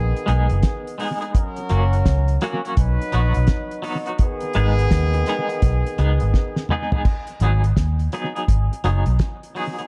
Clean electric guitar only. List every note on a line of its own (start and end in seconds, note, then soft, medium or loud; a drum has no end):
0.26 0.46 G#3 medium
0.26 0.47 B3 medium
0.26 0.47 D#4 medium
0.26 0.48 G#4 medium
0.98 1.18 G#3 medium
0.98 1.18 B3 medium
0.98 1.19 D#4 medium
0.98 1.19 G#4 medium
1.21 1.31 G#3 medium
1.21 1.31 B3 medium
1.21 1.30 D#4 medium
1.21 1.30 G#4 medium
1.70 1.89 F#3 medium
1.70 1.90 A#3 loud
1.70 1.90 C#4 medium
1.70 1.90 F#4 medium
2.42 2.61 F#3 medium
2.42 2.61 A#3 loud
2.42 2.62 C#4 medium
2.42 2.62 F#4 loud
2.65 2.74 F#3 medium
2.65 2.74 A#3 medium
2.65 2.74 C#4 medium
2.65 2.73 F#4 medium
3.12 3.32 F#3 medium
3.12 3.32 B3 medium
3.12 3.32 D#4 medium
3.12 3.33 F#4 loud
3.82 4.03 F#3 medium
3.82 4.03 B3 medium
3.82 4.04 D#4 medium
3.82 4.03 F#4 medium
4.07 4.16 F#3 medium
4.07 4.16 B3 medium
4.07 4.16 D#4 medium
4.07 4.16 F#4 medium
4.55 4.74 G#3 medium
4.55 4.75 B3 medium
4.55 4.75 D#4 medium
4.55 4.75 G#4 loud
5.14 muted clean electric guitar stroke soft
5.28 5.46 G#3 medium
5.28 5.47 B3 medium
5.28 5.47 D#4 medium
5.28 5.47 G#4 loud
5.99 6.18 G#3 medium
5.99 6.18 B3 medium
5.99 6.18 D#4 medium
5.99 6.19 G#4 medium
6.70 6.89 G#3 medium
6.70 6.90 B3 medium
6.70 6.90 D#4 medium
6.70 6.90 G#4 medium
6.93 7.03 G#3 medium
6.93 7.02 B3 medium
6.93 7.02 D#4 medium
6.93 7.01 G#4 medium
7.42 7.61 F#3 medium
7.42 7.61 B3 medium
7.42 7.61 D#4 medium
7.42 7.62 G#4 loud
8.13 8.32 F#3 medium
8.13 8.32 B3 medium
8.13 8.33 D#4 medium
8.13 8.33 G#4 medium
8.35 8.45 F#3 medium
8.35 8.44 B3 medium
8.35 8.44 D#4 medium
8.35 8.44 G#4 medium
8.84 9.03 F#3 medium
8.84 9.03 B3 medium
8.84 9.04 D#4 medium
8.84 9.04 G#4 medium
9.55 9.74 F#3 medium
9.55 9.75 B3 medium
9.55 9.75 D#4 medium
9.55 9.75 G#4 loud
9.79 9.87 F#3 soft
9.79 9.87 B3 medium
9.79 9.87 D#4 medium
9.79 9.87 G#4 medium